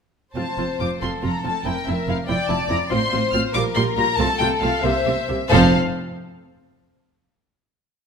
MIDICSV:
0, 0, Header, 1, 6, 480
1, 0, Start_track
1, 0, Key_signature, -1, "major"
1, 0, Tempo, 433213
1, 397, Time_signature, 6, 3, 24, 8
1, 1832, Tempo, 420757
1, 4712, Tempo, 443131
1, 7112, Tempo, 429492
1, 8979, End_track
2, 0, Start_track
2, 0, Title_t, "Violin section"
2, 0, Program_c, 0, 48
2, 402, Note_on_c, 0, 81, 54
2, 852, Note_off_c, 0, 81, 0
2, 891, Note_on_c, 0, 86, 56
2, 980, Note_off_c, 0, 86, 0
2, 1130, Note_on_c, 0, 84, 54
2, 1218, Note_off_c, 0, 84, 0
2, 1373, Note_on_c, 0, 82, 56
2, 1598, Note_off_c, 0, 82, 0
2, 1613, Note_on_c, 0, 81, 54
2, 1836, Note_off_c, 0, 81, 0
2, 1838, Note_on_c, 0, 79, 61
2, 2074, Note_on_c, 0, 76, 66
2, 2078, Note_off_c, 0, 79, 0
2, 2315, Note_off_c, 0, 76, 0
2, 2325, Note_on_c, 0, 77, 64
2, 2417, Note_off_c, 0, 77, 0
2, 2557, Note_on_c, 0, 79, 74
2, 2785, Note_on_c, 0, 81, 67
2, 2786, Note_off_c, 0, 79, 0
2, 3020, Note_on_c, 0, 82, 74
2, 3024, Note_off_c, 0, 81, 0
2, 3111, Note_off_c, 0, 82, 0
2, 3263, Note_on_c, 0, 84, 82
2, 3734, Note_on_c, 0, 89, 86
2, 3736, Note_off_c, 0, 84, 0
2, 3825, Note_off_c, 0, 89, 0
2, 3984, Note_on_c, 0, 86, 94
2, 4075, Note_off_c, 0, 86, 0
2, 4226, Note_on_c, 0, 84, 87
2, 4317, Note_off_c, 0, 84, 0
2, 4476, Note_on_c, 0, 82, 85
2, 4710, Note_on_c, 0, 81, 94
2, 4711, Note_off_c, 0, 82, 0
2, 4942, Note_on_c, 0, 79, 94
2, 4945, Note_off_c, 0, 81, 0
2, 5028, Note_off_c, 0, 79, 0
2, 5180, Note_on_c, 0, 77, 78
2, 5411, Note_off_c, 0, 77, 0
2, 5418, Note_on_c, 0, 76, 81
2, 6155, Note_off_c, 0, 76, 0
2, 6157, Note_on_c, 0, 77, 86
2, 6422, Note_off_c, 0, 77, 0
2, 8979, End_track
3, 0, Start_track
3, 0, Title_t, "Violin section"
3, 0, Program_c, 1, 48
3, 397, Note_on_c, 1, 72, 46
3, 1079, Note_off_c, 1, 72, 0
3, 1115, Note_on_c, 1, 69, 49
3, 1829, Note_off_c, 1, 69, 0
3, 1831, Note_on_c, 1, 70, 54
3, 2536, Note_off_c, 1, 70, 0
3, 2552, Note_on_c, 1, 74, 67
3, 3249, Note_off_c, 1, 74, 0
3, 3267, Note_on_c, 1, 72, 61
3, 3988, Note_off_c, 1, 72, 0
3, 3992, Note_on_c, 1, 70, 69
3, 4714, Note_off_c, 1, 70, 0
3, 4720, Note_on_c, 1, 69, 77
3, 5419, Note_off_c, 1, 69, 0
3, 5419, Note_on_c, 1, 72, 68
3, 5782, Note_off_c, 1, 72, 0
3, 6145, Note_on_c, 1, 69, 72
3, 6147, Note_on_c, 1, 72, 80
3, 6416, Note_off_c, 1, 69, 0
3, 6417, Note_off_c, 1, 72, 0
3, 8979, End_track
4, 0, Start_track
4, 0, Title_t, "Viola section"
4, 0, Program_c, 2, 48
4, 393, Note_on_c, 2, 60, 40
4, 395, Note_on_c, 2, 65, 39
4, 481, Note_off_c, 2, 60, 0
4, 484, Note_off_c, 2, 65, 0
4, 638, Note_on_c, 2, 60, 38
4, 639, Note_on_c, 2, 65, 36
4, 727, Note_off_c, 2, 60, 0
4, 728, Note_off_c, 2, 65, 0
4, 877, Note_on_c, 2, 65, 35
4, 880, Note_on_c, 2, 60, 36
4, 966, Note_off_c, 2, 65, 0
4, 968, Note_off_c, 2, 60, 0
4, 1124, Note_on_c, 2, 60, 35
4, 1125, Note_on_c, 2, 65, 40
4, 1213, Note_off_c, 2, 60, 0
4, 1213, Note_off_c, 2, 65, 0
4, 1355, Note_on_c, 2, 65, 37
4, 1356, Note_on_c, 2, 60, 40
4, 1444, Note_off_c, 2, 60, 0
4, 1444, Note_off_c, 2, 65, 0
4, 1595, Note_on_c, 2, 65, 34
4, 1598, Note_on_c, 2, 60, 39
4, 1684, Note_off_c, 2, 65, 0
4, 1687, Note_off_c, 2, 60, 0
4, 1830, Note_on_c, 2, 64, 45
4, 1831, Note_on_c, 2, 60, 48
4, 1921, Note_off_c, 2, 64, 0
4, 1922, Note_off_c, 2, 60, 0
4, 2074, Note_on_c, 2, 60, 45
4, 2076, Note_on_c, 2, 64, 42
4, 2165, Note_off_c, 2, 60, 0
4, 2167, Note_off_c, 2, 64, 0
4, 2313, Note_on_c, 2, 64, 42
4, 2316, Note_on_c, 2, 60, 40
4, 2404, Note_off_c, 2, 64, 0
4, 2407, Note_off_c, 2, 60, 0
4, 2546, Note_on_c, 2, 60, 47
4, 2551, Note_on_c, 2, 64, 50
4, 2637, Note_off_c, 2, 60, 0
4, 2642, Note_off_c, 2, 64, 0
4, 2775, Note_on_c, 2, 60, 46
4, 2777, Note_on_c, 2, 64, 51
4, 2866, Note_off_c, 2, 60, 0
4, 2868, Note_off_c, 2, 64, 0
4, 3013, Note_on_c, 2, 64, 48
4, 3016, Note_on_c, 2, 60, 44
4, 3104, Note_off_c, 2, 64, 0
4, 3107, Note_off_c, 2, 60, 0
4, 3257, Note_on_c, 2, 60, 60
4, 3258, Note_on_c, 2, 65, 58
4, 3348, Note_off_c, 2, 60, 0
4, 3349, Note_off_c, 2, 65, 0
4, 3498, Note_on_c, 2, 60, 53
4, 3501, Note_on_c, 2, 65, 53
4, 3589, Note_off_c, 2, 60, 0
4, 3593, Note_off_c, 2, 65, 0
4, 3750, Note_on_c, 2, 60, 52
4, 3750, Note_on_c, 2, 65, 49
4, 3841, Note_off_c, 2, 60, 0
4, 3841, Note_off_c, 2, 65, 0
4, 3984, Note_on_c, 2, 55, 57
4, 3986, Note_on_c, 2, 65, 60
4, 4075, Note_off_c, 2, 55, 0
4, 4078, Note_off_c, 2, 65, 0
4, 4227, Note_on_c, 2, 65, 59
4, 4229, Note_on_c, 2, 55, 57
4, 4318, Note_off_c, 2, 65, 0
4, 4320, Note_off_c, 2, 55, 0
4, 4469, Note_on_c, 2, 65, 55
4, 4471, Note_on_c, 2, 55, 54
4, 4560, Note_off_c, 2, 65, 0
4, 4562, Note_off_c, 2, 55, 0
4, 4717, Note_on_c, 2, 65, 65
4, 4718, Note_on_c, 2, 57, 63
4, 4803, Note_off_c, 2, 65, 0
4, 4805, Note_off_c, 2, 57, 0
4, 4958, Note_on_c, 2, 57, 61
4, 4958, Note_on_c, 2, 65, 59
4, 5044, Note_off_c, 2, 57, 0
4, 5045, Note_off_c, 2, 65, 0
4, 5188, Note_on_c, 2, 65, 55
4, 5190, Note_on_c, 2, 57, 52
4, 5275, Note_off_c, 2, 65, 0
4, 5276, Note_off_c, 2, 57, 0
4, 5424, Note_on_c, 2, 58, 57
4, 5427, Note_on_c, 2, 67, 59
4, 5511, Note_off_c, 2, 58, 0
4, 5513, Note_off_c, 2, 67, 0
4, 5661, Note_on_c, 2, 67, 49
4, 5662, Note_on_c, 2, 58, 54
4, 5747, Note_off_c, 2, 67, 0
4, 5749, Note_off_c, 2, 58, 0
4, 5909, Note_on_c, 2, 67, 49
4, 5911, Note_on_c, 2, 58, 48
4, 5996, Note_off_c, 2, 67, 0
4, 5997, Note_off_c, 2, 58, 0
4, 6156, Note_on_c, 2, 60, 72
4, 6157, Note_on_c, 2, 53, 69
4, 6422, Note_off_c, 2, 53, 0
4, 6422, Note_off_c, 2, 60, 0
4, 8979, End_track
5, 0, Start_track
5, 0, Title_t, "Cello section"
5, 0, Program_c, 3, 48
5, 403, Note_on_c, 3, 41, 46
5, 492, Note_off_c, 3, 41, 0
5, 650, Note_on_c, 3, 41, 37
5, 738, Note_off_c, 3, 41, 0
5, 898, Note_on_c, 3, 41, 36
5, 987, Note_off_c, 3, 41, 0
5, 1129, Note_on_c, 3, 41, 42
5, 1217, Note_off_c, 3, 41, 0
5, 1374, Note_on_c, 3, 41, 45
5, 1463, Note_off_c, 3, 41, 0
5, 1606, Note_on_c, 3, 41, 44
5, 1694, Note_off_c, 3, 41, 0
5, 1841, Note_on_c, 3, 41, 49
5, 1932, Note_off_c, 3, 41, 0
5, 2089, Note_on_c, 3, 41, 47
5, 2180, Note_off_c, 3, 41, 0
5, 2322, Note_on_c, 3, 41, 49
5, 2413, Note_off_c, 3, 41, 0
5, 2553, Note_on_c, 3, 41, 52
5, 2644, Note_off_c, 3, 41, 0
5, 2791, Note_on_c, 3, 41, 58
5, 2882, Note_off_c, 3, 41, 0
5, 3027, Note_on_c, 3, 41, 55
5, 3119, Note_off_c, 3, 41, 0
5, 3276, Note_on_c, 3, 45, 62
5, 3367, Note_off_c, 3, 45, 0
5, 3509, Note_on_c, 3, 45, 61
5, 3600, Note_off_c, 3, 45, 0
5, 3753, Note_on_c, 3, 45, 58
5, 3845, Note_off_c, 3, 45, 0
5, 3989, Note_on_c, 3, 46, 63
5, 4081, Note_off_c, 3, 46, 0
5, 4229, Note_on_c, 3, 46, 65
5, 4320, Note_off_c, 3, 46, 0
5, 4469, Note_on_c, 3, 46, 64
5, 4560, Note_off_c, 3, 46, 0
5, 4715, Note_on_c, 3, 48, 74
5, 4802, Note_off_c, 3, 48, 0
5, 4950, Note_on_c, 3, 48, 62
5, 5036, Note_off_c, 3, 48, 0
5, 5184, Note_on_c, 3, 48, 63
5, 5271, Note_off_c, 3, 48, 0
5, 5419, Note_on_c, 3, 48, 64
5, 5505, Note_off_c, 3, 48, 0
5, 5659, Note_on_c, 3, 48, 62
5, 5746, Note_off_c, 3, 48, 0
5, 5908, Note_on_c, 3, 48, 61
5, 5994, Note_off_c, 3, 48, 0
5, 6158, Note_on_c, 3, 41, 83
5, 6423, Note_off_c, 3, 41, 0
5, 8979, End_track
6, 0, Start_track
6, 0, Title_t, "Double bass section"
6, 0, Program_c, 4, 48
6, 393, Note_on_c, 4, 29, 43
6, 482, Note_off_c, 4, 29, 0
6, 645, Note_on_c, 4, 29, 37
6, 734, Note_off_c, 4, 29, 0
6, 888, Note_on_c, 4, 29, 35
6, 977, Note_off_c, 4, 29, 0
6, 1130, Note_on_c, 4, 29, 43
6, 1219, Note_off_c, 4, 29, 0
6, 1364, Note_on_c, 4, 29, 44
6, 1453, Note_off_c, 4, 29, 0
6, 1601, Note_on_c, 4, 29, 42
6, 1690, Note_off_c, 4, 29, 0
6, 1838, Note_on_c, 4, 29, 52
6, 1929, Note_off_c, 4, 29, 0
6, 2086, Note_on_c, 4, 29, 44
6, 2177, Note_off_c, 4, 29, 0
6, 2322, Note_on_c, 4, 29, 46
6, 2413, Note_off_c, 4, 29, 0
6, 2556, Note_on_c, 4, 29, 59
6, 2647, Note_off_c, 4, 29, 0
6, 2794, Note_on_c, 4, 29, 53
6, 2885, Note_off_c, 4, 29, 0
6, 3024, Note_on_c, 4, 29, 55
6, 3116, Note_off_c, 4, 29, 0
6, 3267, Note_on_c, 4, 33, 59
6, 3358, Note_off_c, 4, 33, 0
6, 3514, Note_on_c, 4, 33, 53
6, 3605, Note_off_c, 4, 33, 0
6, 3745, Note_on_c, 4, 33, 56
6, 3836, Note_off_c, 4, 33, 0
6, 3986, Note_on_c, 4, 34, 64
6, 4077, Note_off_c, 4, 34, 0
6, 4231, Note_on_c, 4, 34, 60
6, 4322, Note_off_c, 4, 34, 0
6, 4475, Note_on_c, 4, 34, 54
6, 4567, Note_off_c, 4, 34, 0
6, 4712, Note_on_c, 4, 36, 68
6, 4799, Note_off_c, 4, 36, 0
6, 4949, Note_on_c, 4, 36, 61
6, 5036, Note_off_c, 4, 36, 0
6, 5187, Note_on_c, 4, 36, 60
6, 5273, Note_off_c, 4, 36, 0
6, 5413, Note_on_c, 4, 36, 69
6, 5500, Note_off_c, 4, 36, 0
6, 5658, Note_on_c, 4, 36, 63
6, 5744, Note_off_c, 4, 36, 0
6, 5911, Note_on_c, 4, 36, 56
6, 5997, Note_off_c, 4, 36, 0
6, 6162, Note_on_c, 4, 29, 84
6, 6425, Note_off_c, 4, 29, 0
6, 8979, End_track
0, 0, End_of_file